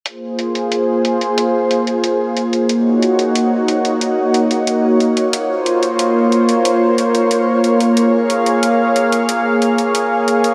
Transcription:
0.05 10.54 A#3 medium
0.05 2.67 F4 medium
0.05 2.67 G#4 medium
0.05 2.67 C5 medium
0.05 closed hi-hat medium
0.39 closed hi-hat medium
0.55 closed hi-hat medium
0.72 closed hi-hat medium
1.05 closed hi-hat medium
1.21 closed hi-hat medium
1.38 closed hi-hat medium
1.71 closed hi-hat medium
1.87 closed hi-hat medium
2.04 closed hi-hat medium
2.37 closed hi-hat medium
2.53 closed hi-hat medium
2.69 5.30 D#4 medium
2.69 5.30 F#4 medium
2.69 10.54 C#5 medium
2.69 closed hi-hat medium
3.02 closed hi-hat medium
3.19 closed hi-hat medium
3.35 closed hi-hat medium
3.68 closed hi-hat medium
3.85 closed hi-hat medium
4.01 closed hi-hat medium
4.34 closed hi-hat medium
4.51 closed hi-hat medium
4.67 closed hi-hat medium
5.00 closed hi-hat medium
5.17 closed hi-hat medium
5.33 7.94 F4 medium
5.33 7.94 C5 medium
5.33 closed hi-hat medium
5.66 closed hi-hat medium
5.83 closed hi-hat medium
5.99 closed hi-hat medium
6.32 closed hi-hat medium
6.49 closed hi-hat medium
6.65 closed hi-hat medium
6.98 closed hi-hat medium
7.15 closed hi-hat medium
7.31 closed hi-hat medium
7.64 closed hi-hat medium
7.80 closed hi-hat medium
7.97 10.54 G#4 medium
7.97 10.54 F5 medium
7.97 closed hi-hat medium
8.30 closed hi-hat medium
8.46 closed hi-hat medium
8.63 closed hi-hat medium
8.96 closed hi-hat medium
9.12 closed hi-hat medium
9.29 closed hi-hat medium
9.62 closed hi-hat medium
9.78 closed hi-hat medium
9.95 closed hi-hat medium
10.28 closed hi-hat medium
10.44 closed hi-hat medium

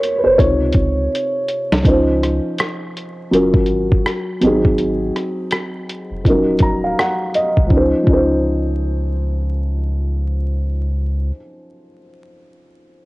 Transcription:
0.00 0.41 A#3 medium
0.00 0.41 C4 soft
0.00 0.40 F#4 medium
0.00 0.20 A#4 medium
0.00 0.24 C5 loud
0.00 0.38 C#5 medium
0.00 closed hi-hat medium
0.18 0.24 B4 medium
0.24 0.38 F#1 medium
0.24 0.39 C5 medium
0.38 0.72 C#2 loud
0.38 1.81 C3 medium
0.38 1.81 D#4 medium
0.38 1.82 F4 medium
0.38 1.08 C#5 medium
0.38 kick medium
0.38 closed hi-hat medium
0.72 1.08 C#2 medium
0.72 kick medium
0.72 closed hi-hat medium
1.15 closed hi-hat medium
1.48 closed hi-hat medium
1.71 1.84 C2 medium
1.71 snare medium
1.83 2.40 C#2 loud
1.83 3.27 F3 medium
1.83 3.28 C#4 medium
1.83 3.29 D#4 medium
1.83 kick loud
1.83 closed hi-hat medium
1.88 3.30 C5 medium
2.23 cross-stick soft
2.23 closed hi-hat medium
2.58 cross-stick loud
2.58 closed hi-hat medium
2.97 closed hi-hat medium
3.31 3.65 F#1 medium
3.31 4.39 F#3 medium
3.31 4.41 C#4 medium
3.31 4.42 F4 medium
3.31 4.42 A#4 medium
3.31 closed hi-hat medium
3.54 kick medium
3.66 4.01 G#1 medium
3.66 closed hi-hat medium
3.92 kick medium
4.06 cross-stick loud
4.06 closed hi-hat medium
4.41 5.11 G#1 medium
4.41 6.20 F#3 medium
4.41 6.21 C4 medium
4.41 6.22 D#4 medium
4.41 closed hi-hat medium
4.46 6.23 G#4 medium
4.65 kick medium
4.78 closed hi-hat medium
5.16 cross-stick soft
5.16 closed hi-hat medium
5.51 cross-stick loud
5.51 closed hi-hat medium
5.89 closed hi-hat medium
6.10 6.23 F1 medium
6.24 6.58 D#1 loud
6.24 6.32 F3 medium
6.24 7.68 C#4 medium
6.24 7.69 D#4 medium
6.24 kick medium
6.24 closed hi-hat medium
6.29 7.71 F#3 medium
6.29 7.70 A#4 medium
6.59 6.94 D#1 loud
6.59 6.82 A#5 medium
6.59 kick medium
6.59 closed hi-hat medium
6.84 6.97 F5 medium
6.99 7.32 F#5 medium
6.99 cross-stick loud
6.99 closed hi-hat medium
7.34 7.68 D#5 medium
7.34 closed hi-hat medium
7.57 7.70 C2 medium
7.57 kick medium
7.67 7.94 C#2 medium
7.67 7.92 F3 medium
7.67 7.94 C#4 medium
7.67 kick medium
7.73 7.95 D#4 medium
7.73 7.97 C5 medium
8.03 11.27 F3 medium
8.03 11.30 C#4 medium
8.07 11.31 C#2 medium
8.07 11.34 D#4 medium
8.07 kick medium
8.13 11.37 C5 medium

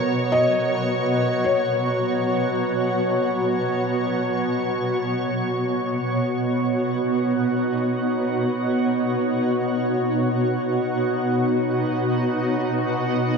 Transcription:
0.00 13.38 B2 medium
0.00 4.84 F#3 medium
0.00 4.97 B3 medium
0.00 4.97 F#4 medium
0.00 13.38 F#4 medium
0.00 0.35 A#4 medium
0.00 13.38 C#5 medium
0.00 4.86 A#5 medium
0.32 1.49 D#5 medium
1.44 3.68 C#5 medium
5.48 13.38 B3 medium
6.24 13.38 D#4 medium

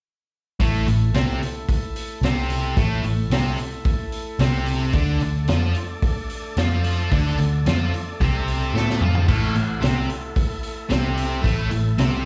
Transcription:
0.60 0.85 A1 medium
0.60 0.86 A2 loud
0.60 0.86 A3 medium
0.60 4.91 A3 medium
0.60 4.91 E4 medium
0.60 4.91 A4 medium
0.60 kick loud
0.60 open hi-hat medium
0.87 1.12 A1 medium
0.87 1.09 A2 medium
0.87 open hi-hat medium
1.14 1.39 C2 loud
1.14 1.40 C3 medium
1.14 1.40 C4 medium
1.14 snare loud
1.14 open hi-hat medium
1.42 open hi-hat medium
1.69 kick medium
1.69 open hi-hat medium
1.96 open hi-hat medium
2.21 2.72 C2 medium
2.21 2.76 C3 loud
2.21 2.77 C4 loud
2.21 snare medium
2.21 open hi-hat medium
2.50 open hi-hat medium
2.77 3.02 A1 loud
2.77 3.02 A2 medium
2.77 3.03 A3 loud
2.77 kick loud
2.77 open hi-hat medium
3.03 3.29 A1 medium
3.03 3.25 A2 medium
3.03 open hi-hat medium
3.30 3.56 C2 medium
3.30 3.58 C3 medium
3.30 3.58 C4 medium
3.30 snare loud
3.30 open hi-hat medium
3.58 open hi-hat medium
3.85 kick loud
3.85 open hi-hat medium
4.12 open hi-hat medium
4.39 4.90 C2 medium
4.39 4.93 C3 loud
4.39 4.94 C4 loud
4.39 snare loud
4.39 open hi-hat medium
4.66 open hi-hat medium
4.93 5.19 D2 loud
4.93 5.20 D3 medium
4.93 9.25 A3 medium
4.93 5.20 D4 loud
4.93 9.25 D4 medium
4.93 9.25 A4 medium
4.93 9.25 D5 medium
4.93 kick loud
4.93 open hi-hat medium
5.20 5.47 D2 medium
5.20 5.43 D3 medium
5.20 open hi-hat medium
5.48 5.74 F2 medium
5.48 5.75 F3 medium
5.48 5.75 F4 medium
5.48 snare loud
5.48 open hi-hat medium
5.75 open hi-hat medium
6.02 kick loud
6.02 open hi-hat medium
6.29 open hi-hat medium
6.57 7.08 F2 loud
6.57 7.11 F3 medium
6.57 7.11 F4 loud
6.57 snare loud
6.57 open hi-hat medium
6.84 open hi-hat medium
7.11 7.37 D2 loud
7.11 7.38 D3 medium
7.11 7.38 D4 medium
7.11 kick medium
7.11 open hi-hat medium
7.38 7.64 D2 medium
7.38 7.60 D3 medium
7.38 open hi-hat medium
7.66 7.91 F2 medium
7.66 7.92 F3 medium
7.66 7.93 F4 medium
7.66 snare loud
7.66 open hi-hat medium
7.94 open hi-hat medium
8.20 8.71 C2 loud
8.20 8.74 C3 loud
8.20 8.74 C4 loud
8.20 kick loud
8.20 open hi-hat medium
8.48 open hi-hat medium
8.74 8.99 A2 loud
8.74 9.01 A3 medium
8.74 9.01 A4 loud
8.74 snare medium
8.89 snare medium
9.01 9.26 F2 loud
9.01 9.27 F3 medium
9.01 9.28 F4 loud
9.01 mid tom loud
9.15 floor tom medium
9.27 9.54 A1 loud
9.27 9.53 A2 medium
9.27 9.54 A3 loud
9.27 12.25 A3 medium
9.27 12.25 E4 medium
9.27 12.25 A4 medium
9.27 kick loud
9.27 open hi-hat medium
9.27 crash medium
9.55 9.81 A1 medium
9.55 9.77 A2 medium
9.55 open hi-hat medium
9.81 10.08 C2 medium
9.81 10.08 C3 medium
9.81 10.08 C4 medium
9.81 snare loud
9.81 open hi-hat medium
10.10 open hi-hat medium
10.36 kick loud
10.36 open hi-hat medium
10.63 open hi-hat medium
10.90 11.41 C2 medium
10.90 11.43 C3 medium
10.90 11.43 C4 loud
10.90 snare loud
10.90 open hi-hat medium
11.17 open hi-hat medium
11.43 11.69 A1 loud
11.43 11.70 A2 medium
11.43 11.70 A3 loud
11.43 kick loud
11.43 open hi-hat medium
11.71 11.97 A1 medium
11.71 11.93 A2 medium
11.71 open hi-hat medium
11.98 12.24 C2 medium
11.98 12.25 C3 medium
11.98 12.25 C4 loud
11.98 snare loud
11.98 open hi-hat medium

